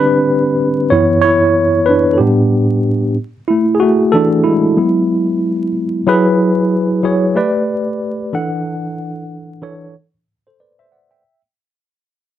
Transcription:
Already playing: D3 G3 C4 D4 G4 B4
0.90 F#2 E3 B3 E4 C#5
1.22 E4 C#5
1.86 D4 B4
2.13 A4
2.18 A2 G3 B3 D4 G4
3.48 A3 E4
3.75 G#4
3.80 A3 F#4
4.12 E3 A3 D4 A4
4.44 G#3 E4
4.77 F#3 B3 E4
6.07 F#3 E4 G#4 B4
7.03 F#3 E4 G#4 C#5
7.35 A3 G4 B4 D5
8.33 E3 D4 A4 F#5
9.62 E3 D4 A4 C#5
10.47 A4 C5
10.60 B4 D5
10.79 C5 E5
10.92 D5 F#5
11.11 E5 G5

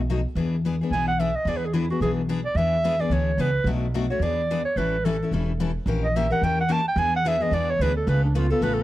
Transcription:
Already playing: B1
0.10 B2 F#3 A3 D#4 F#4
0.35 E2 E3 B3 D4 G#4
0.65 E3 B3 D4 G#4
0.81 B3 D4 G#4
0.91 B1 E3 B3 D4 G#4 G#5
1.07 F#5
1.19 E3 B3 D4 G#4 E5
1.36 D#5
1.45 E2 E3 B3 D4 G#4 D5
1.57 B4
1.65 G#4
1.73 E3 B3 D4 E4 G#4
1.90 B3 D4 F#4 G#4
2.01 B1 E3 B3 D4 G#4
2.29 E3 B3 D4 G#4
2.45 D5
2.55 E2 E3 B3 D4 G#4 E5
2.84 E3 B3 D4 G#4
2.99 B3 D4 G#4 D5
3.09 D2 E3 B3 D4 G#4 C#5
3.37 C#2 E3 B3 D4 G#4 B4
3.64 B1 B2 F#3 A3 D4 F#4
3.94 B2 F#3 A3 D4 F#4
4.10 A3 D4 F#4 C#5
4.19 E2 E3 B3 D4 G#4 D5
4.51 E3 B3 D4 G#4
4.65 C#5
4.76 A1 E3 G3 C#4 E4 A4 B4
5.05 E3 G3 C#4 E4 A4
5.22 C#4 E4 A4
5.31 E1 E3 G3 C#4 E4 A4
5.60 E3 G3 C#4 E4 A4
5.86 A#1 E3 A#3 C#4 G4 A#4
6.04 D#5
6.16 E3 A#3 C#4 G4 A#4 E5
6.30 C#4 G4 A#4 F#5
6.42 E2 E3 A#3 C#4 G4 A#4 G5
6.61 F#5
6.68 E3 A#3 C#4 G4 A#4 A5
6.88 G5
6.96 E2 E3 B3 D4 G#4 G#5
7.16 F#5
7.25 E3 B3 D4 G#4 E5
7.40 B3 D4 G#4 D#5
7.51 E2 E3 B3 D4 G#4 D5
7.70 C#5
7.79 D2 E3 B3 D4 G#4 B4
7.97 A4
8.07 C#2 C#3 A3 B3 F4 A4 B4
8.24 D4
8.35 C#3 A3 B3 F4 A4
8.50 B3 F4 A4
8.61 A1 C#3 A3 B3 F4 A4 B4
8.74 A4

